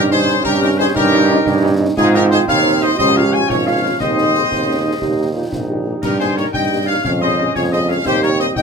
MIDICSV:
0, 0, Header, 1, 9, 480
1, 0, Start_track
1, 0, Tempo, 338219
1, 1362, Time_signature, 6, 3, 24, 8
1, 12235, End_track
2, 0, Start_track
2, 0, Title_t, "Trumpet section"
2, 0, Program_c, 0, 61
2, 165, Note_on_c, 0, 72, 127
2, 610, Note_off_c, 0, 72, 0
2, 639, Note_on_c, 0, 70, 124
2, 864, Note_off_c, 0, 70, 0
2, 889, Note_on_c, 0, 70, 121
2, 996, Note_off_c, 0, 70, 0
2, 1126, Note_on_c, 0, 72, 127
2, 1233, Note_off_c, 0, 72, 0
2, 1360, Note_on_c, 0, 70, 127
2, 2505, Note_off_c, 0, 70, 0
2, 2810, Note_on_c, 0, 68, 127
2, 2916, Note_off_c, 0, 68, 0
2, 3054, Note_on_c, 0, 70, 127
2, 3160, Note_off_c, 0, 70, 0
2, 3279, Note_on_c, 0, 72, 127
2, 3388, Note_off_c, 0, 72, 0
2, 3539, Note_on_c, 0, 77, 127
2, 3978, Note_off_c, 0, 77, 0
2, 4010, Note_on_c, 0, 75, 125
2, 4225, Note_off_c, 0, 75, 0
2, 4242, Note_on_c, 0, 75, 127
2, 4466, Note_off_c, 0, 75, 0
2, 4494, Note_on_c, 0, 77, 125
2, 4729, Note_off_c, 0, 77, 0
2, 4730, Note_on_c, 0, 80, 123
2, 4963, Note_on_c, 0, 73, 116
2, 4966, Note_off_c, 0, 80, 0
2, 5203, Note_off_c, 0, 73, 0
2, 5215, Note_on_c, 0, 77, 107
2, 5679, Note_on_c, 0, 75, 126
2, 5689, Note_off_c, 0, 77, 0
2, 7783, Note_off_c, 0, 75, 0
2, 8561, Note_on_c, 0, 70, 111
2, 8785, Note_off_c, 0, 70, 0
2, 8803, Note_on_c, 0, 72, 106
2, 9025, Note_off_c, 0, 72, 0
2, 9048, Note_on_c, 0, 73, 108
2, 9154, Note_off_c, 0, 73, 0
2, 9277, Note_on_c, 0, 79, 112
2, 9726, Note_off_c, 0, 79, 0
2, 9744, Note_on_c, 0, 77, 112
2, 9975, Note_off_c, 0, 77, 0
2, 9994, Note_on_c, 0, 77, 114
2, 10104, Note_off_c, 0, 77, 0
2, 10244, Note_on_c, 0, 75, 106
2, 10689, Note_off_c, 0, 75, 0
2, 10719, Note_on_c, 0, 73, 113
2, 10828, Note_off_c, 0, 73, 0
2, 10971, Note_on_c, 0, 75, 102
2, 11190, Note_off_c, 0, 75, 0
2, 11196, Note_on_c, 0, 77, 112
2, 11439, Note_off_c, 0, 77, 0
2, 11445, Note_on_c, 0, 72, 116
2, 11667, Note_off_c, 0, 72, 0
2, 11694, Note_on_c, 0, 73, 121
2, 11922, Note_on_c, 0, 75, 115
2, 11928, Note_off_c, 0, 73, 0
2, 12030, Note_off_c, 0, 75, 0
2, 12156, Note_on_c, 0, 79, 117
2, 12235, Note_off_c, 0, 79, 0
2, 12235, End_track
3, 0, Start_track
3, 0, Title_t, "Woodwind section"
3, 0, Program_c, 1, 71
3, 161, Note_on_c, 1, 72, 112
3, 608, Note_off_c, 1, 72, 0
3, 629, Note_on_c, 1, 70, 112
3, 740, Note_off_c, 1, 70, 0
3, 871, Note_on_c, 1, 70, 117
3, 1099, Note_off_c, 1, 70, 0
3, 1110, Note_on_c, 1, 72, 108
3, 1356, Note_off_c, 1, 72, 0
3, 1358, Note_on_c, 1, 70, 126
3, 2504, Note_off_c, 1, 70, 0
3, 2801, Note_on_c, 1, 68, 127
3, 3025, Note_off_c, 1, 68, 0
3, 3038, Note_on_c, 1, 70, 113
3, 3147, Note_off_c, 1, 70, 0
3, 3287, Note_on_c, 1, 72, 102
3, 3394, Note_off_c, 1, 72, 0
3, 3522, Note_on_c, 1, 77, 127
3, 3969, Note_off_c, 1, 77, 0
3, 3999, Note_on_c, 1, 75, 96
3, 4224, Note_off_c, 1, 75, 0
3, 4252, Note_on_c, 1, 75, 127
3, 4471, Note_off_c, 1, 75, 0
3, 4487, Note_on_c, 1, 77, 110
3, 4722, Note_on_c, 1, 80, 112
3, 4725, Note_off_c, 1, 77, 0
3, 4959, Note_on_c, 1, 73, 109
3, 4962, Note_off_c, 1, 80, 0
3, 5068, Note_off_c, 1, 73, 0
3, 5202, Note_on_c, 1, 77, 105
3, 5649, Note_off_c, 1, 77, 0
3, 5683, Note_on_c, 1, 75, 117
3, 7786, Note_off_c, 1, 75, 0
3, 8551, Note_on_c, 1, 70, 106
3, 8661, Note_off_c, 1, 70, 0
3, 8798, Note_on_c, 1, 72, 96
3, 9023, Note_off_c, 1, 72, 0
3, 9040, Note_on_c, 1, 73, 89
3, 9148, Note_off_c, 1, 73, 0
3, 9271, Note_on_c, 1, 79, 105
3, 9723, Note_off_c, 1, 79, 0
3, 9743, Note_on_c, 1, 77, 99
3, 9975, Note_off_c, 1, 77, 0
3, 9997, Note_on_c, 1, 77, 110
3, 10222, Note_off_c, 1, 77, 0
3, 10245, Note_on_c, 1, 75, 105
3, 10690, Note_off_c, 1, 75, 0
3, 10721, Note_on_c, 1, 73, 107
3, 10952, Note_on_c, 1, 75, 104
3, 10961, Note_off_c, 1, 73, 0
3, 11179, Note_off_c, 1, 75, 0
3, 11205, Note_on_c, 1, 77, 102
3, 11427, Note_off_c, 1, 77, 0
3, 11445, Note_on_c, 1, 72, 119
3, 11673, Note_on_c, 1, 73, 107
3, 11683, Note_off_c, 1, 72, 0
3, 11917, Note_off_c, 1, 73, 0
3, 11919, Note_on_c, 1, 75, 94
3, 12143, Note_off_c, 1, 75, 0
3, 12145, Note_on_c, 1, 79, 115
3, 12235, Note_off_c, 1, 79, 0
3, 12235, End_track
4, 0, Start_track
4, 0, Title_t, "Flute section"
4, 0, Program_c, 2, 73
4, 0, Note_on_c, 2, 67, 116
4, 146, Note_off_c, 2, 67, 0
4, 166, Note_on_c, 2, 68, 102
4, 611, Note_off_c, 2, 68, 0
4, 637, Note_on_c, 2, 67, 120
4, 858, Note_off_c, 2, 67, 0
4, 875, Note_on_c, 2, 67, 105
4, 960, Note_off_c, 2, 67, 0
4, 1117, Note_on_c, 2, 68, 123
4, 1343, Note_off_c, 2, 68, 0
4, 1362, Note_on_c, 2, 67, 127
4, 2506, Note_off_c, 2, 67, 0
4, 2797, Note_on_c, 2, 63, 127
4, 3023, Note_off_c, 2, 63, 0
4, 3035, Note_on_c, 2, 67, 113
4, 3279, Note_off_c, 2, 67, 0
4, 3282, Note_on_c, 2, 68, 123
4, 3506, Note_off_c, 2, 68, 0
4, 3519, Note_on_c, 2, 73, 127
4, 3968, Note_off_c, 2, 73, 0
4, 3992, Note_on_c, 2, 72, 108
4, 4216, Note_off_c, 2, 72, 0
4, 4233, Note_on_c, 2, 72, 127
4, 4461, Note_off_c, 2, 72, 0
4, 4470, Note_on_c, 2, 73, 109
4, 4706, Note_on_c, 2, 77, 111
4, 4716, Note_off_c, 2, 73, 0
4, 4791, Note_off_c, 2, 77, 0
4, 4965, Note_on_c, 2, 68, 112
4, 5051, Note_off_c, 2, 68, 0
4, 5212, Note_on_c, 2, 73, 104
4, 5654, Note_off_c, 2, 73, 0
4, 5676, Note_on_c, 2, 72, 116
4, 7782, Note_off_c, 2, 72, 0
4, 8557, Note_on_c, 2, 67, 103
4, 8783, Note_off_c, 2, 67, 0
4, 8788, Note_on_c, 2, 68, 99
4, 9017, Note_off_c, 2, 68, 0
4, 9033, Note_on_c, 2, 70, 98
4, 9273, Note_on_c, 2, 75, 111
4, 9277, Note_off_c, 2, 70, 0
4, 9723, Note_off_c, 2, 75, 0
4, 9760, Note_on_c, 2, 73, 107
4, 9976, Note_off_c, 2, 73, 0
4, 9993, Note_on_c, 2, 73, 114
4, 10078, Note_off_c, 2, 73, 0
4, 10226, Note_on_c, 2, 72, 96
4, 10679, Note_off_c, 2, 72, 0
4, 10719, Note_on_c, 2, 68, 99
4, 10944, Note_off_c, 2, 68, 0
4, 10950, Note_on_c, 2, 72, 95
4, 11035, Note_off_c, 2, 72, 0
4, 11192, Note_on_c, 2, 73, 105
4, 11277, Note_off_c, 2, 73, 0
4, 11429, Note_on_c, 2, 67, 116
4, 11658, Note_off_c, 2, 67, 0
4, 11674, Note_on_c, 2, 70, 100
4, 11759, Note_off_c, 2, 70, 0
4, 11914, Note_on_c, 2, 72, 104
4, 11999, Note_off_c, 2, 72, 0
4, 12157, Note_on_c, 2, 75, 117
4, 12235, Note_off_c, 2, 75, 0
4, 12235, End_track
5, 0, Start_track
5, 0, Title_t, "Euphonium"
5, 0, Program_c, 3, 58
5, 0, Note_on_c, 3, 63, 108
5, 624, Note_on_c, 3, 67, 110
5, 645, Note_off_c, 3, 63, 0
5, 1333, Note_off_c, 3, 67, 0
5, 1342, Note_on_c, 3, 63, 127
5, 2736, Note_off_c, 3, 63, 0
5, 2796, Note_on_c, 3, 65, 127
5, 3469, Note_off_c, 3, 65, 0
5, 3511, Note_on_c, 3, 63, 117
5, 4227, Note_on_c, 3, 67, 127
5, 4248, Note_off_c, 3, 63, 0
5, 4950, Note_on_c, 3, 65, 100
5, 4971, Note_off_c, 3, 67, 0
5, 5669, Note_off_c, 3, 65, 0
5, 5677, Note_on_c, 3, 63, 95
5, 6305, Note_off_c, 3, 63, 0
5, 6388, Note_on_c, 3, 60, 94
5, 6612, Note_off_c, 3, 60, 0
5, 6620, Note_on_c, 3, 61, 91
5, 6733, Note_off_c, 3, 61, 0
5, 6876, Note_on_c, 3, 63, 89
5, 6985, Note_off_c, 3, 63, 0
5, 7098, Note_on_c, 3, 67, 102
5, 7555, Note_off_c, 3, 67, 0
5, 7590, Note_on_c, 3, 65, 93
5, 7819, Note_off_c, 3, 65, 0
5, 7841, Note_on_c, 3, 65, 97
5, 7949, Note_off_c, 3, 65, 0
5, 8073, Note_on_c, 3, 67, 82
5, 8524, Note_off_c, 3, 67, 0
5, 9276, Note_on_c, 3, 63, 98
5, 10012, Note_on_c, 3, 61, 94
5, 10033, Note_off_c, 3, 63, 0
5, 10724, Note_on_c, 3, 65, 96
5, 10745, Note_off_c, 3, 61, 0
5, 11425, Note_off_c, 3, 65, 0
5, 11433, Note_on_c, 3, 67, 111
5, 12160, Note_on_c, 3, 63, 104
5, 12181, Note_off_c, 3, 67, 0
5, 12235, Note_off_c, 3, 63, 0
5, 12235, End_track
6, 0, Start_track
6, 0, Title_t, "French horn section"
6, 0, Program_c, 4, 60
6, 161, Note_on_c, 4, 63, 81
6, 165, Note_off_c, 4, 63, 0
6, 165, Note_on_c, 4, 63, 83
6, 168, Note_on_c, 4, 61, 83
6, 251, Note_off_c, 4, 63, 0
6, 253, Note_off_c, 4, 61, 0
6, 414, Note_on_c, 4, 63, 85
6, 415, Note_off_c, 4, 63, 0
6, 415, Note_on_c, 4, 61, 89
6, 415, Note_on_c, 4, 63, 87
6, 498, Note_off_c, 4, 63, 0
6, 499, Note_off_c, 4, 61, 0
6, 894, Note_on_c, 4, 63, 88
6, 895, Note_on_c, 4, 61, 88
6, 978, Note_off_c, 4, 63, 0
6, 979, Note_off_c, 4, 61, 0
6, 1129, Note_on_c, 4, 61, 90
6, 1129, Note_on_c, 4, 63, 89
6, 1130, Note_off_c, 4, 63, 0
6, 1130, Note_on_c, 4, 63, 87
6, 1214, Note_off_c, 4, 61, 0
6, 1215, Note_off_c, 4, 63, 0
6, 1614, Note_on_c, 4, 63, 98
6, 1618, Note_off_c, 4, 63, 0
6, 1618, Note_on_c, 4, 61, 87
6, 1618, Note_on_c, 4, 63, 89
6, 1701, Note_off_c, 4, 61, 0
6, 1701, Note_off_c, 4, 63, 0
6, 1848, Note_on_c, 4, 63, 90
6, 1849, Note_on_c, 4, 61, 89
6, 1850, Note_off_c, 4, 63, 0
6, 1850, Note_on_c, 4, 63, 97
6, 1934, Note_off_c, 4, 61, 0
6, 1935, Note_off_c, 4, 63, 0
6, 2321, Note_on_c, 4, 61, 85
6, 2322, Note_on_c, 4, 63, 96
6, 2327, Note_off_c, 4, 63, 0
6, 2327, Note_on_c, 4, 63, 95
6, 2408, Note_off_c, 4, 61, 0
6, 2412, Note_off_c, 4, 63, 0
6, 2569, Note_on_c, 4, 63, 95
6, 2570, Note_off_c, 4, 63, 0
6, 2570, Note_on_c, 4, 63, 91
6, 2572, Note_on_c, 4, 61, 86
6, 2655, Note_off_c, 4, 63, 0
6, 2656, Note_off_c, 4, 61, 0
6, 3047, Note_on_c, 4, 63, 100
6, 3049, Note_off_c, 4, 63, 0
6, 3049, Note_on_c, 4, 60, 94
6, 3049, Note_on_c, 4, 63, 100
6, 3134, Note_off_c, 4, 60, 0
6, 3134, Note_off_c, 4, 63, 0
6, 3295, Note_on_c, 4, 60, 95
6, 3295, Note_on_c, 4, 63, 96
6, 3297, Note_off_c, 4, 63, 0
6, 3297, Note_on_c, 4, 63, 90
6, 3379, Note_off_c, 4, 60, 0
6, 3380, Note_off_c, 4, 63, 0
6, 3767, Note_on_c, 4, 60, 92
6, 3770, Note_on_c, 4, 63, 81
6, 3771, Note_off_c, 4, 63, 0
6, 3771, Note_on_c, 4, 63, 89
6, 3852, Note_off_c, 4, 60, 0
6, 3855, Note_off_c, 4, 63, 0
6, 4012, Note_on_c, 4, 63, 92
6, 4014, Note_on_c, 4, 60, 83
6, 4097, Note_off_c, 4, 63, 0
6, 4098, Note_off_c, 4, 60, 0
6, 4491, Note_on_c, 4, 65, 83
6, 4492, Note_on_c, 4, 56, 84
6, 4492, Note_on_c, 4, 61, 85
6, 4576, Note_off_c, 4, 56, 0
6, 4576, Note_off_c, 4, 65, 0
6, 4577, Note_off_c, 4, 61, 0
6, 4739, Note_on_c, 4, 56, 85
6, 4740, Note_on_c, 4, 61, 89
6, 4742, Note_on_c, 4, 65, 83
6, 4822, Note_off_c, 4, 56, 0
6, 4823, Note_off_c, 4, 61, 0
6, 4824, Note_off_c, 4, 65, 0
6, 5212, Note_on_c, 4, 65, 76
6, 5213, Note_on_c, 4, 56, 74
6, 5216, Note_on_c, 4, 61, 76
6, 5296, Note_off_c, 4, 65, 0
6, 5297, Note_off_c, 4, 56, 0
6, 5299, Note_off_c, 4, 61, 0
6, 5449, Note_on_c, 4, 61, 82
6, 5450, Note_on_c, 4, 65, 77
6, 5453, Note_on_c, 4, 56, 75
6, 5534, Note_off_c, 4, 61, 0
6, 5535, Note_off_c, 4, 65, 0
6, 5537, Note_off_c, 4, 56, 0
6, 5932, Note_on_c, 4, 56, 76
6, 5938, Note_on_c, 4, 60, 73
6, 5938, Note_on_c, 4, 68, 78
6, 6016, Note_off_c, 4, 56, 0
6, 6021, Note_off_c, 4, 60, 0
6, 6021, Note_off_c, 4, 68, 0
6, 6182, Note_on_c, 4, 68, 69
6, 6183, Note_on_c, 4, 56, 78
6, 6184, Note_on_c, 4, 60, 71
6, 6264, Note_off_c, 4, 68, 0
6, 6265, Note_off_c, 4, 56, 0
6, 6266, Note_off_c, 4, 60, 0
6, 6667, Note_on_c, 4, 56, 67
6, 6668, Note_on_c, 4, 68, 63
6, 6670, Note_on_c, 4, 60, 71
6, 6747, Note_off_c, 4, 56, 0
6, 6749, Note_off_c, 4, 68, 0
6, 6750, Note_off_c, 4, 60, 0
6, 6903, Note_on_c, 4, 60, 66
6, 6904, Note_on_c, 4, 68, 71
6, 6905, Note_on_c, 4, 56, 68
6, 6985, Note_off_c, 4, 60, 0
6, 6986, Note_off_c, 4, 56, 0
6, 6986, Note_off_c, 4, 68, 0
6, 7379, Note_on_c, 4, 63, 72
6, 7379, Note_on_c, 4, 67, 70
6, 7383, Note_on_c, 4, 58, 67
6, 7461, Note_off_c, 4, 63, 0
6, 7462, Note_off_c, 4, 67, 0
6, 7465, Note_off_c, 4, 58, 0
6, 7610, Note_on_c, 4, 63, 66
6, 7610, Note_on_c, 4, 67, 70
6, 7612, Note_on_c, 4, 58, 65
6, 7694, Note_off_c, 4, 67, 0
6, 7695, Note_off_c, 4, 63, 0
6, 7696, Note_off_c, 4, 58, 0
6, 8097, Note_on_c, 4, 63, 64
6, 8098, Note_on_c, 4, 58, 71
6, 8098, Note_on_c, 4, 67, 69
6, 8180, Note_off_c, 4, 63, 0
6, 8180, Note_off_c, 4, 67, 0
6, 8181, Note_off_c, 4, 58, 0
6, 8334, Note_on_c, 4, 67, 65
6, 8335, Note_on_c, 4, 58, 72
6, 8336, Note_on_c, 4, 63, 69
6, 8418, Note_off_c, 4, 67, 0
6, 8419, Note_off_c, 4, 58, 0
6, 8420, Note_off_c, 4, 63, 0
6, 8808, Note_on_c, 4, 67, 77
6, 8810, Note_on_c, 4, 63, 75
6, 8811, Note_on_c, 4, 58, 76
6, 8893, Note_off_c, 4, 67, 0
6, 8895, Note_off_c, 4, 63, 0
6, 8896, Note_off_c, 4, 58, 0
6, 9053, Note_on_c, 4, 63, 81
6, 9058, Note_on_c, 4, 58, 81
6, 9058, Note_on_c, 4, 67, 77
6, 9137, Note_off_c, 4, 63, 0
6, 9140, Note_off_c, 4, 67, 0
6, 9141, Note_off_c, 4, 58, 0
6, 9529, Note_on_c, 4, 58, 70
6, 9530, Note_on_c, 4, 63, 77
6, 9530, Note_on_c, 4, 67, 70
6, 9614, Note_off_c, 4, 58, 0
6, 9614, Note_off_c, 4, 63, 0
6, 9614, Note_off_c, 4, 67, 0
6, 9774, Note_on_c, 4, 58, 72
6, 9777, Note_on_c, 4, 67, 79
6, 9779, Note_on_c, 4, 63, 81
6, 9857, Note_off_c, 4, 58, 0
6, 9860, Note_off_c, 4, 67, 0
6, 9861, Note_off_c, 4, 63, 0
6, 10254, Note_on_c, 4, 56, 81
6, 10254, Note_on_c, 4, 68, 71
6, 10256, Note_on_c, 4, 61, 76
6, 10337, Note_off_c, 4, 68, 0
6, 10338, Note_off_c, 4, 56, 0
6, 10339, Note_off_c, 4, 61, 0
6, 10493, Note_on_c, 4, 56, 79
6, 10494, Note_on_c, 4, 61, 79
6, 10495, Note_on_c, 4, 68, 81
6, 10577, Note_off_c, 4, 56, 0
6, 10578, Note_off_c, 4, 61, 0
6, 10579, Note_off_c, 4, 68, 0
6, 10973, Note_on_c, 4, 61, 82
6, 10977, Note_on_c, 4, 56, 74
6, 10977, Note_on_c, 4, 68, 75
6, 11057, Note_off_c, 4, 61, 0
6, 11060, Note_off_c, 4, 56, 0
6, 11060, Note_off_c, 4, 68, 0
6, 11217, Note_on_c, 4, 56, 80
6, 11218, Note_on_c, 4, 61, 77
6, 11218, Note_on_c, 4, 68, 77
6, 11300, Note_off_c, 4, 56, 0
6, 11301, Note_off_c, 4, 61, 0
6, 11301, Note_off_c, 4, 68, 0
6, 11686, Note_on_c, 4, 55, 83
6, 11687, Note_on_c, 4, 60, 78
6, 11687, Note_on_c, 4, 63, 78
6, 11771, Note_off_c, 4, 55, 0
6, 11772, Note_off_c, 4, 60, 0
6, 11772, Note_off_c, 4, 63, 0
6, 11927, Note_on_c, 4, 60, 79
6, 11927, Note_on_c, 4, 63, 80
6, 11928, Note_on_c, 4, 55, 82
6, 12012, Note_off_c, 4, 60, 0
6, 12012, Note_off_c, 4, 63, 0
6, 12013, Note_off_c, 4, 55, 0
6, 12235, End_track
7, 0, Start_track
7, 0, Title_t, "Trombone section"
7, 0, Program_c, 5, 61
7, 0, Note_on_c, 5, 51, 89
7, 0, Note_on_c, 5, 61, 90
7, 2743, Note_off_c, 5, 51, 0
7, 2746, Note_off_c, 5, 61, 0
7, 2801, Note_on_c, 5, 60, 100
7, 2805, Note_on_c, 5, 51, 91
7, 4185, Note_off_c, 5, 60, 0
7, 4187, Note_off_c, 5, 51, 0
7, 4245, Note_on_c, 5, 53, 92
7, 4249, Note_on_c, 5, 61, 96
7, 5684, Note_off_c, 5, 53, 0
7, 5686, Note_off_c, 5, 61, 0
7, 5695, Note_on_c, 5, 56, 79
7, 5696, Note_on_c, 5, 60, 75
7, 7072, Note_off_c, 5, 56, 0
7, 7072, Note_off_c, 5, 60, 0
7, 7125, Note_on_c, 5, 55, 73
7, 7130, Note_on_c, 5, 63, 74
7, 9770, Note_off_c, 5, 55, 0
7, 9770, Note_off_c, 5, 63, 0
7, 10011, Note_on_c, 5, 61, 79
7, 10018, Note_on_c, 5, 56, 82
7, 11389, Note_off_c, 5, 61, 0
7, 11393, Note_off_c, 5, 56, 0
7, 11440, Note_on_c, 5, 55, 79
7, 11443, Note_on_c, 5, 60, 83
7, 12235, Note_off_c, 5, 55, 0
7, 12235, Note_off_c, 5, 60, 0
7, 12235, End_track
8, 0, Start_track
8, 0, Title_t, "Tuba"
8, 0, Program_c, 6, 58
8, 0, Note_on_c, 6, 43, 107
8, 519, Note_off_c, 6, 43, 0
8, 639, Note_on_c, 6, 43, 103
8, 1241, Note_off_c, 6, 43, 0
8, 1363, Note_on_c, 6, 43, 120
8, 1963, Note_off_c, 6, 43, 0
8, 2076, Note_on_c, 6, 43, 117
8, 2679, Note_off_c, 6, 43, 0
8, 2801, Note_on_c, 6, 44, 127
8, 3402, Note_off_c, 6, 44, 0
8, 3516, Note_on_c, 6, 39, 112
8, 4119, Note_off_c, 6, 39, 0
8, 4246, Note_on_c, 6, 37, 116
8, 4844, Note_off_c, 6, 37, 0
8, 4970, Note_on_c, 6, 32, 93
8, 5506, Note_off_c, 6, 32, 0
8, 5684, Note_on_c, 6, 39, 99
8, 6283, Note_off_c, 6, 39, 0
8, 6400, Note_on_c, 6, 39, 93
8, 7001, Note_off_c, 6, 39, 0
8, 7124, Note_on_c, 6, 39, 95
8, 7723, Note_off_c, 6, 39, 0
8, 7843, Note_on_c, 6, 34, 86
8, 8442, Note_off_c, 6, 34, 0
8, 8558, Note_on_c, 6, 43, 101
8, 9159, Note_off_c, 6, 43, 0
8, 9284, Note_on_c, 6, 43, 92
8, 9882, Note_off_c, 6, 43, 0
8, 10005, Note_on_c, 6, 41, 102
8, 10603, Note_off_c, 6, 41, 0
8, 10717, Note_on_c, 6, 41, 103
8, 11319, Note_off_c, 6, 41, 0
8, 11433, Note_on_c, 6, 39, 108
8, 12037, Note_off_c, 6, 39, 0
8, 12156, Note_on_c, 6, 39, 98
8, 12235, Note_off_c, 6, 39, 0
8, 12235, End_track
9, 0, Start_track
9, 0, Title_t, "Drums"
9, 153, Note_on_c, 9, 38, 62
9, 295, Note_off_c, 9, 38, 0
9, 396, Note_on_c, 9, 38, 59
9, 538, Note_off_c, 9, 38, 0
9, 636, Note_on_c, 9, 35, 92
9, 636, Note_on_c, 9, 38, 80
9, 777, Note_off_c, 9, 35, 0
9, 777, Note_off_c, 9, 38, 0
9, 1359, Note_on_c, 9, 35, 96
9, 1359, Note_on_c, 9, 38, 85
9, 1501, Note_off_c, 9, 35, 0
9, 1501, Note_off_c, 9, 38, 0
9, 2076, Note_on_c, 9, 35, 92
9, 2076, Note_on_c, 9, 38, 81
9, 2217, Note_off_c, 9, 35, 0
9, 2217, Note_off_c, 9, 38, 0
9, 2799, Note_on_c, 9, 35, 103
9, 2799, Note_on_c, 9, 38, 83
9, 2799, Note_on_c, 9, 49, 39
9, 2941, Note_off_c, 9, 35, 0
9, 2941, Note_off_c, 9, 38, 0
9, 2941, Note_off_c, 9, 49, 0
9, 3038, Note_on_c, 9, 38, 60
9, 3179, Note_off_c, 9, 38, 0
9, 3279, Note_on_c, 9, 38, 62
9, 3421, Note_off_c, 9, 38, 0
9, 3522, Note_on_c, 9, 35, 98
9, 3522, Note_on_c, 9, 38, 79
9, 3664, Note_off_c, 9, 35, 0
9, 3664, Note_off_c, 9, 38, 0
9, 4245, Note_on_c, 9, 35, 92
9, 4245, Note_on_c, 9, 38, 86
9, 4387, Note_off_c, 9, 35, 0
9, 4387, Note_off_c, 9, 38, 0
9, 4965, Note_on_c, 9, 35, 94
9, 4965, Note_on_c, 9, 38, 78
9, 5107, Note_off_c, 9, 35, 0
9, 5107, Note_off_c, 9, 38, 0
9, 5680, Note_on_c, 9, 35, 85
9, 5680, Note_on_c, 9, 38, 83
9, 5680, Note_on_c, 9, 49, 36
9, 5822, Note_off_c, 9, 35, 0
9, 5822, Note_off_c, 9, 38, 0
9, 5822, Note_off_c, 9, 49, 0
9, 5931, Note_on_c, 9, 38, 60
9, 6073, Note_off_c, 9, 38, 0
9, 6170, Note_on_c, 9, 38, 61
9, 6312, Note_off_c, 9, 38, 0
9, 6410, Note_on_c, 9, 35, 92
9, 6410, Note_on_c, 9, 38, 73
9, 6552, Note_off_c, 9, 35, 0
9, 6552, Note_off_c, 9, 38, 0
9, 7120, Note_on_c, 9, 35, 85
9, 7120, Note_on_c, 9, 38, 67
9, 7262, Note_off_c, 9, 35, 0
9, 7262, Note_off_c, 9, 38, 0
9, 7839, Note_on_c, 9, 35, 88
9, 7839, Note_on_c, 9, 38, 86
9, 7981, Note_off_c, 9, 35, 0
9, 7981, Note_off_c, 9, 38, 0
9, 8556, Note_on_c, 9, 35, 98
9, 8556, Note_on_c, 9, 38, 86
9, 8556, Note_on_c, 9, 49, 65
9, 8698, Note_off_c, 9, 35, 0
9, 8698, Note_off_c, 9, 38, 0
9, 8698, Note_off_c, 9, 49, 0
9, 8800, Note_on_c, 9, 38, 59
9, 8942, Note_off_c, 9, 38, 0
9, 9041, Note_on_c, 9, 38, 62
9, 9183, Note_off_c, 9, 38, 0
9, 9280, Note_on_c, 9, 35, 91
9, 9280, Note_on_c, 9, 38, 77
9, 9422, Note_off_c, 9, 35, 0
9, 9422, Note_off_c, 9, 38, 0
9, 10001, Note_on_c, 9, 35, 96
9, 10001, Note_on_c, 9, 38, 82
9, 10142, Note_off_c, 9, 35, 0
9, 10142, Note_off_c, 9, 38, 0
9, 10718, Note_on_c, 9, 35, 86
9, 10718, Note_on_c, 9, 38, 72
9, 10860, Note_off_c, 9, 35, 0
9, 10860, Note_off_c, 9, 38, 0
9, 11432, Note_on_c, 9, 35, 90
9, 11432, Note_on_c, 9, 38, 82
9, 11432, Note_on_c, 9, 49, 35
9, 11574, Note_off_c, 9, 35, 0
9, 11574, Note_off_c, 9, 38, 0
9, 11574, Note_off_c, 9, 49, 0
9, 11674, Note_on_c, 9, 38, 63
9, 11816, Note_off_c, 9, 38, 0
9, 11911, Note_on_c, 9, 38, 63
9, 12053, Note_off_c, 9, 38, 0
9, 12151, Note_on_c, 9, 35, 96
9, 12151, Note_on_c, 9, 38, 75
9, 12235, Note_off_c, 9, 35, 0
9, 12235, Note_off_c, 9, 38, 0
9, 12235, End_track
0, 0, End_of_file